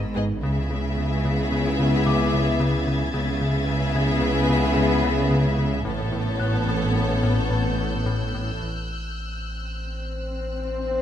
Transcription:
Already playing: double bass section G#1, sub bass G#1, cello section G#2, french horn section B3 D#4, violin section B5 E6
0.14 analog synth bass G#2, viola section B3, violin section G#4 D#5
0.41 double bass section C#2, sub bass C#2, cello section C#3, analog synth bass C#3, viola section B3, french horn section B3 E4, violin section G#4 E5 G#6
0.70 analog synth bass C#3
0.96 analog synth bass C#3, violin section A6
1.25 analog synth bass C#3
1.52 analog synth bass C#3
1.79 analog synth bass C#3
2.06 analog synth bass C#3, celesta D6
2.34 analog synth bass C#3
2.60 analog synth bass C#3
2.87 analog synth bass C#3
3.12 double bass section C#2, sub bass C#2, analog synth bass C#3, cello section C#3, french horn section B3 E4, viola section B3, violin section G#4 E5
3.41 analog synth bass C#3
3.69 analog synth bass C#3
3.95 analog synth bass C#3, celesta G#6
4.22 analog synth bass C#3
4.49 analog synth bass C#3
4.77 analog synth bass C#3
5.04 analog synth bass C#3
5.31 analog synth bass C#3
5.58 analog synth bass C#3
5.84 sub bass A1, double bass section A1, analog synth bass A2, cello section A2, french horn section B3 C#4, viola section B3, violin section A4 C#5 E6 G6
6.12 analog synth bass A2
6.39 analog synth bass A2, celesta F#6, violin section F#6
6.67 analog synth bass A2
6.95 analog synth bass A2
7.23 analog synth bass A2
7.50 analog synth bass A2, celesta A5 A6
7.78 analog synth bass A2
8.06 analog synth bass A2
8.34 analog synth bass A2
8.62 sub bass A1, swell

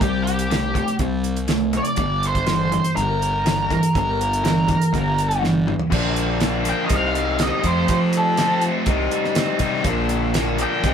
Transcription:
0.01 fingered electric bass C2, overdriven electric guitar C3 G3, lead electric guitar G4, kick, closed hi-hat
0.24 lead electric guitar G4, closed hi-hat
0.39 closed hi-hat
0.51 overdriven electric guitar C3 A3, snare, closed hi-hat
0.74 overdriven electric guitar C3 A3, kick, closed hi-hat
0.88 closed hi-hat
0.99 fingered electric bass C2, overdriven electric guitar C3 G3, kick, closed hi-hat
1.24 closed hi-hat
1.36 closed hi-hat
1.48 overdriven electric guitar C3 A3, snare, closed hi-hat
1.73 overdriven electric guitar C3 A3, closed hi-hat
1.77 lead electric guitar D5
1.85 closed hi-hat
1.96 fingered electric bass G1, overdriven electric guitar G2 D3, kick, closed hi-hat
2.23 lead electric guitar C5, closed hi-hat
2.35 kick, closed hi-hat
2.46 overdriven electric guitar G2 E3, snare, closed hi-hat
2.72 overdriven electric guitar G2 E3, closed hi-hat
2.84 closed hi-hat
2.95 fingered electric bass G1, overdriven electric guitar G2 D3, lead electric guitar A#4, closed hi-hat
3.22 closed hi-hat
3.46 overdriven electric guitar G2 E3, snare, closed hi-hat
3.70 overdriven electric guitar G2 E3, kick, closed hi-hat
3.83 closed hi-hat
3.95 fingered electric bass G1, overdriven electric guitar G2 D3, lead electric guitar A#4, kick, closed hi-hat
4.21 closed hi-hat
4.33 closed hi-hat
4.44 overdriven electric guitar G2 E3, snare, closed hi-hat
4.68 overdriven electric guitar G2 E3, kick, closed hi-hat
4.73 overdriven electric guitar G2 E3
4.82 closed hi-hat
4.93 fingered electric bass G1, overdriven electric guitar G2 D3, kick, closed hi-hat
5.18 closed hi-hat
5.31 closed hi-hat
5.42 overdriven electric guitar G2 E3, snare
5.54 high tom
5.67 overdriven electric guitar G2 E3, mid tom
5.79 floor tom
5.90 fingered electric bass A#1, overdriven electric guitar A#2 D3 F3 A#3 D4, kick, crash
6.16 closed hi-hat
6.40 overdriven electric guitar D4, snare, closed hi-hat
6.63 overdriven electric guitar A#2 D3 F3 A#3 D4, closed hi-hat
6.69 overdriven electric guitar A#3, lead electric guitar G5
6.84 lead electric guitar D#5
6.88 fingered electric bass C2, overdriven electric guitar C3 G3 C4 D#4, kick, closed hi-hat
6.93 overdriven electric guitar C3, lead electric guitar F5
7.15 overdriven electric guitar C4, closed hi-hat
7.39 overdriven electric guitar D#4, lead electric guitar D#5, snare, closed hi-hat
7.63 overdriven electric guitar F2 C3 F3 A3 C4, fingered electric bass F2, kick, closed hi-hat
7.67 lead electric guitar C5
7.88 overdriven electric guitar F2, fingered electric bass F3, lead electric guitar C5, kick, closed hi-hat
8.13 closed hi-hat
8.17 lead electric guitar A4
8.37 overdriven electric guitar F2 C3 F3 A3 C4, snare, closed hi-hat
8.61 overdriven electric guitar A3, closed hi-hat
8.86 fingered electric bass C2, overdriven electric guitar C3 G3 C4 D#4, kick, closed hi-hat
9.11 overdriven electric guitar G3, closed hi-hat
9.25 snare
9.35 overdriven electric guitar C4, snare, closed hi-hat
9.59 fingered electric bass C3, overdriven electric guitar G3 C4 D#4, kick, closed hi-hat
9.64 overdriven electric guitar C3
9.84 fingered electric bass A#1, overdriven electric guitar A#2 D3 F3 A#3 D4, kick, closed hi-hat
10.09 closed hi-hat
10.34 overdriven electric guitar A#3, snare, closed hi-hat
10.58 overdriven electric guitar A#2 D3 F3 A#3 D4, closed hi-hat
10.62 lead electric guitar G5
10.83 fingered electric bass C2, overdriven electric guitar C3 G3 C4 D#4, kick, closed hi-hat
10.87 lead electric guitar F5

